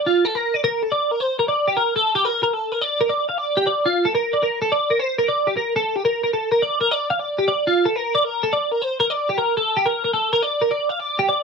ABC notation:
X:1
M:5/4
L:1/16
Q:1/4=158
K:Gm
V:1 name="Clean electric guitar"
F2 A B2 d B2 A d2 B c2 B d2 G B2 | A2 G B2 B A2 B d2 B d2 f d2 G d2 | F2 A B2 d B2 A d2 B c2 B d2 G B2 | A2 G B2 B A2 B d2 B d2 f d2 G d2 |
F2 A B2 d B2 A d2 B c2 B d2 G B2 | A2 G B2 B A2 B d2 B d2 f d2 G d2 |]